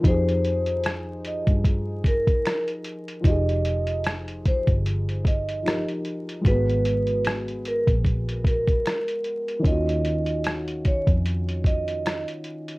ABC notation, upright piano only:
X:1
M:4/4
L:1/8
Q:"Swing 16ths" 1/4=75
K:Abmix
V:1 name="Upright piano"
[F,E=GA]8 | [F,E=GA]6 [F,EGB]2 | [A,_CGA]8 | [E,DFG]8 |]